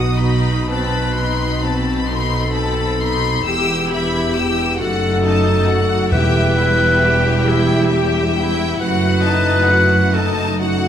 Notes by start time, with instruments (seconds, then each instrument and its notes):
Already playing: double bass section B1, cello section B2, french horn section B3 D#4, viola section F#4, clarinet F#4, violin section F#5 D#6
0.17 viola section D#4, violin section D#5 B5
0.69 viola section C4, french horn section C4, clarinet B4, violin section A5 B5
1.18 viola section D#4, violin section B5 C6
1.62 viola section C4, violin section A5 B5
2.08 viola section D#4, clarinet A4, violin section B5 C6
2.53 viola section C4, violin section A5 B5
3.00 viola section D#4, violin section B5 C6
3.45 double bass section E1, cello section E2, french horn section B3 E4, viola section G4, clarinet G4, violin section G5 E6
3.89 viola section E4, violin section E5 B5
4.34 viola section G4, violin section G5 E6
4.78 double bass section F#1, cello section F#2, french horn section A3 D#4, viola section F#4, clarinet A4, violin section F#5
5.23 viola section D#4, violin section D#5 A5
5.67 viola section F#4, violin section F#5
6.10 double bass section E1, timpani E2, cello section E2, french horn section G3 E4, viola section G4, clarinet B4, violin section E5 G5
6.56 viola section E4, violin section E5 G5
7.01 viola section G4, violin section E5 G5
7.46 viola section E4, clarinet G4, violin section E5 G5
7.90 viola section G4, violin section E5 G5
8.35 viola section E4, violin section E5 G5
8.80 double bass section F#1, cello section F#2, french horn section A3, viola section F#4, clarinet B4, violin section F#5
9.23 viola section D#4, violin section D#5 A5
9.68 viola section F#4, violin section F#5
10.14 french horn section D#4, viola section D#4, clarinet A4, violin section D#5 A5
10.60 viola section F#4, violin section F#5